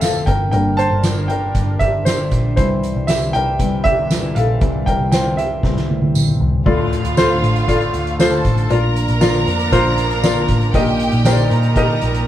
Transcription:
Already playing: F1 C3 F3 A3 C4 F4 G4 A4 C5 E5
0.00 A4 F5, snare, closed hi-hat, tambourine
0.26 G1 G3 D4 A#4 G5, kick, closed hi-hat
0.51 G1 D3 G3 A#3 A#4 G5, closed hi-hat
0.77 C5 A5, closed hi-hat
0.91 G1
1.03 snare, closed hi-hat, tambourine
1.28 A#4 G5, closed hi-hat
1.55 G1, kick, closed hi-hat
1.79 G4 E5, kick, closed hi-hat
2.05 G4 C5, snare, closed hi-hat, tambourine
2.31 A#1, kick, snare, closed hi-hat
2.56 C2 C3 E3 G3 C4 E4 C5, kick, closed hi-hat
2.83 closed hi-hat
2.96 C2
3.07 G4 E5, snare, closed hi-hat, tambourine
3.33 C2 A#4 G5, closed hi-hat
3.59 C2 E3 G3 C4, kick, closed hi-hat
3.84 G4 E5, kick, closed hi-hat
4.11 snare, closed hi-hat, tambourine
4.35 A#1 A4 F5, closed hi-hat
4.61 C2 E3 G3 C4, kick, closed hi-hat
4.86 A#4 G5, kick, closed hi-hat
5.00 C2
5.12 C5 G5, snare, closed hi-hat, tambourine
5.37 G4 E5, closed hi-hat
5.63 C2 E3 G3 C4, kick, snare
5.76 snare
5.89 high tom
6.02 high tom
6.15 mid tom, tambourine
6.28 mid tom
6.40 C2, floor tom
6.53 floor tom
6.65 D2 A2 D3 A3 F4 A4 D5 F5, kick, crash
6.93 closed hi-hat
7.04 D2, closed hi-hat
7.17 F4 A4 C5, snare, tambourine
7.42 A1, closed hi-hat
7.56 closed hi-hat
7.68 F4 A4 D5, kick, closed hi-hat
7.81 closed hi-hat
7.94 D2, closed hi-hat
8.07 closed hi-hat
8.19 F4 A4 C5 A5, snare, tambourine
8.32 closed hi-hat
8.45 A1, kick, closed hi-hat
8.58 closed hi-hat
8.70 A#1 F3 A#3 D4 F4 A#4 D5 A#5, closed hi-hat
8.96 closed hi-hat
9.08 A#1, closed hi-hat
9.21 F4 A#4 D5, snare, tambourine
9.34 closed hi-hat
9.47 F2, closed hi-hat
9.59 closed hi-hat
9.72 A#1 F4 A#4 C5, kick, closed hi-hat
9.98 closed hi-hat
10.11 closed hi-hat
10.23 F4 A#4 D5, snare, tambourine
10.48 A1, kick, snare, closed hi-hat
10.61 closed hi-hat
10.74 A#1 A#2 G3 D#4 G4 A#4 D#5 G5, kick, closed hi-hat
10.87 closed hi-hat
11.00 closed hi-hat
11.12 A#1, closed hi-hat
11.25 G4 A#4 C5, snare, tambourine
11.32 D5
11.37 closed hi-hat
11.51 A#2 A#4 A#5, closed hi-hat
11.63 closed hi-hat
11.76 G4 A#4 D#5, kick, closed hi-hat
12.02 A#1, closed hi-hat
12.14 closed hi-hat

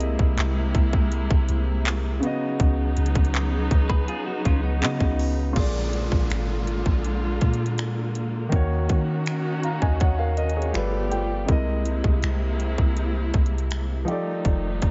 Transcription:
Already playing: C2 C3 G#3 A#3 E4 G#4 D#5
0.01 closed hi-hat
0.19 C2, kick
0.38 C2, clap, closed hi-hat
0.75 C2, kick, closed hi-hat
0.93 kick
1.12 closed hi-hat
1.31 C2, kick
1.49 C2, closed hi-hat
1.85 clap, closed hi-hat
2.20 C#3 F#3 B3 D#4, closed hi-hat
2.24 F#4 D#5
2.60 C#2, kick, closed hi-hat
2.97 C#2, closed hi-hat
3.06 closed hi-hat
3.15 C#2, kick, closed hi-hat
3.25 closed hi-hat
3.34 clap, closed hi-hat
3.71 C#2, kick, closed hi-hat
3.89 G#4 B4, kick
4.08 F4 G#4, closed hi-hat
4.26 D#4 F#4
4.45 C#2 C#4 F4, kick, closed hi-hat
4.63 B3 D#4
4.81 C#3 B3 F#4 D#5, clap, closed hi-hat
5.00 C#2, kick
5.19 open hi-hat
5.53 A#1 A#2 D3 G#3 A#3 F4, kick, closed hi-hat, crash, downlifter
5.58 G#4 D5
5.93 closed hi-hat
6.12 A#1, kick
6.30 G#1, finger snap, closed hi-hat
6.67 closed hi-hat
6.86 A#1, kick
7.05 closed hi-hat
7.41 A#2, kick, closed hi-hat
7.54 closed hi-hat
7.66 closed hi-hat
7.78 finger snap, closed hi-hat
8.15 closed hi-hat
8.49 D#2 D#3 A#3 C#4 F#4, kick, closed hi-hat
8.53 F#4 C#5
8.89 D#3, kick, closed hi-hat
9.26 finger snap, closed hi-hat
9.63 F5 A#5, closed hi-hat
9.82 D#2 D#5 G#5, kick
10.00 D#2 C#5 F#5, kick, closed hi-hat
10.19 A#4 F5
10.37 A#4 D#5, closed hi-hat
10.50 closed hi-hat
10.56 G#4 C#5
10.62 closed hi-hat
10.73 G1 F3 G3 A3 B3 F4 G4 A4 B4 D5, finger snap, closed hi-hat
11.12 G5, closed hi-hat
11.45 C2 C3 G#3 A#3 E4, kick, closed hi-hat
11.50 A#4 D#5
11.86 closed hi-hat
12.04 C2, kick
12.23 C2, finger snap, closed hi-hat
12.60 closed hi-hat
12.78 C2, kick
12.97 closed hi-hat
13.34 C2, kick, closed hi-hat
13.46 closed hi-hat
13.58 closed hi-hat
13.71 finger snap, closed hi-hat
14.05 D#3 F3 G3 A3 D#4 G4, closed hi-hat
14.10 A4 D5
14.45 F1, kick, closed hi-hat
14.82 F1, kick, closed hi-hat

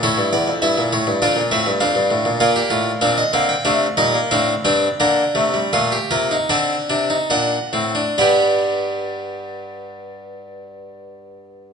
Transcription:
0.03 A2 E4 A4 C#5
0.18 G2
0.33 E2 D5
0.48 F2
0.62 G2 E4 E5
0.78 A#2
0.93 A2 C#5
1.07 G2
1.22 F2 D4 F4 D5
1.36 A#2
1.51 A2 C4 E5
1.66 G2
1.80 F2 D4 F5
1.95 G2
2.11 A2
2.25 A#2
2.40 A#2 A#3 F4 D5
2.56 G4
2.70 A2 F4
3.01 A#2 C4 D4 F5
3.18 D#5
3.33 D3 A#3 C4 F5
3.49 G5
3.65 C3 A3 D4 F5
3.97 A#2 G3 D#4 D#5
4.14 A#3
4.31 A2 C4 D4 F5
4.65 G2 C4 D4 G5
5.00 D3 A#3 D4 A#5
5.35 C3 A3
5.54 G3
5.73 A#2 A3 F4 C6
5.92 G4
6.11 C3 A#3 F4 A#5
6.31 D#4
6.50 D3 C4 D4 A5
6.90 C3 D4
7.10 D#4
7.30 A#2 D4 F#5
7.73 A2 C4
7.95 D4
8.18 G2 G3 B3 D4 G4 D5

